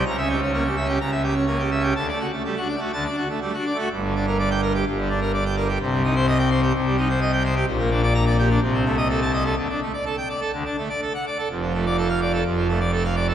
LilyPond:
<<
  \new Staff \with { instrumentName = "Pipe organ" } { \time 4/4 \key g \minor \tempo 4 = 126 << { ais''16 e''16 g'16 cis'16 ais16 g'16 e''16 g'16 ais''16 e''16 g'16 cis'16 ais16 g'16 e''16 g'16 | a''16 d''16 fis'16 a16 g16 fis'16 d''16 fis'16 a''16 d''16 fis'16 a16 g16 fis'16 d''16 fis'16 | r4 r16 g''16 r2 r8 | r4 r16 g''16 r2 r8 |
r4 bes''16 r2 a''16 r8 | r4 r16 g''16 r4. r16 fis''16 r8 | \key d \minor r4 r16 f''16 r2 r8 | } \\ { \tuplet 3/2 { cis8 cis'8 r8 cis'8 r8 cis'8 } cis4 \tuplet 3/2 { cis'8 r8 cis'8 } | \tuplet 3/2 { d8 a8 r8 a8 d'8 a8 d8 d'8 r8 a8 d'8 a8 } | g,16 d16 d'16 bes'16 d''16 r16 bes'16 g'16 g,16 d16 d'16 bes'16 d''16 g''16 bes'16 g'16 | c16 g16 ees'16 c''16 ees''16 r16 c''16 g'16 c16 g16 ees'16 c''16 ees''16 g''16 c''16 g'16 |
bes,16 bes16 d'16 d''16 r16 d''16 g'16 d'16 c16 c'16 a16 ees''16 a'16 r16 ees''16 a'16 | d16 d'16 a16 d''16 a'16 r16 d''16 a'16 d16 d'16 a16 d''16 a'16 r16 d''16 a'16 | f,16 f16 a16 d''16 a'16 r16 d''16 a'16 f,16 f16 a16 d''16 a'16 f''16 d''16 a'16 | } >> }
  \new Staff \with { instrumentName = "Pipe organ" } { \clef bass \time 4/4 \key g \minor cis,2 cis,2 | d,8 r4. d,8 r4. | g,,2 g,,2 | c,2 c,2 |
bes,,2 c,2 | d,16 r4. r16 d,16 r4. r16 | \key d \minor f,,2 f,,2 | }
>>